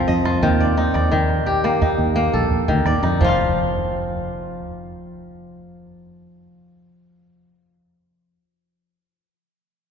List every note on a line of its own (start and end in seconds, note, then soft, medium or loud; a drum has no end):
0.00 0.48 F3 medium
0.00 1.19 C4 medium
0.00 0.25 F4 medium
0.00 0.53 A4 medium
0.00 0.83 A#4 medium
0.08 0.38 F2 medium
0.08 0.66 D#5 medium
0.25 1.77 F4 medium
0.25 calabash click medium
0.43 0.88 D#2 loud
0.43 1.10 D#3 medium
0.43 calabash thump medium
0.43 calabash click soft
0.60 0.94 D5 medium
0.77 1.81 D#4 medium
0.77 calabash click soft
0.94 1.46 D#2 medium
0.94 1.88 D5 medium
0.94 calabash click soft
1.11 2.67 D#3 medium
1.11 calabash thump medium
1.30 calabash click soft
1.46 1.91 A#1 medium
1.46 2.88 G4 medium
1.46 calabash click soft
1.64 2.15 A#3 medium
1.64 calabash click medium
1.82 2.92 D#4 medium
1.82 calabash thump medium
1.82 calabash click soft
1.98 2.28 D#2 medium
2.16 4.09 A#3 medium
2.33 2.64 A#1 medium
2.33 3.65 A4 medium
2.33 calabash thump soft
2.51 calabash thump soft
2.68 2.84 D2 medium
2.68 3.25 D#3 medium
2.68 calabash thump soft
2.85 3.01 D#2 medium
2.85 3.97 D5 medium
2.85 calabash click medium
3.03 3.18 F2 medium
3.03 4.65 D#4 medium
3.03 calabash click medium
3.21 7.45 F1 medium
3.21 7.48 F3 medium
3.21 7.50 F4 medium
3.21 calabash thump medium
3.29 7.52 F5 medium